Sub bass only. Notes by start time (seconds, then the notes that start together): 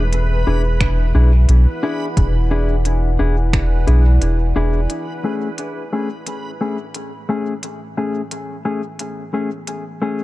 Already playing: E1
0.47 E1
1.15 B1
1.49 B1
2.17 E1
3.20 E1
3.88 B1
4.22 E1
4.56 E1